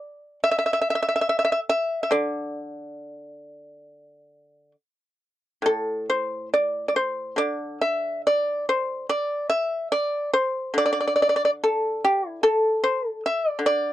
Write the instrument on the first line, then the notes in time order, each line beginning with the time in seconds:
pipa
Already playing: D5
0.44 E5
0.51 E5
0.59 E5
0.66 E5
0.73 E5
0.81 E5
0.90 E5
0.95 E5
1.02 E5
1.08 E5
1.16 E5
1.21 E5
1.29 E5
1.39 E5
1.45 E5
1.52 E5
1.69 E5
2.03 E5
2.11 D3 D5
5.62 A2 A4
6.10 C5
6.54 D5
6.88 D5
6.96 C5
7.36 D3 D5
7.81 E5
8.27 D5
8.69 C5
9.09 D5
9.49 E5
9.92 D5
10.33 C5
10.74 D3
10.78 D5
10.86 D5
10.93 D5
11.01 D5
11.07 D5
11.16 D5
11.22 D5
11.29 D5
11.36 D5
11.45 D5
11.63 A4
12.04 G4
12.29 E4
12.43 A4
12.84 C5
13.09 A4
13.26 E5
13.49 D5
13.59 D3
13.66 D5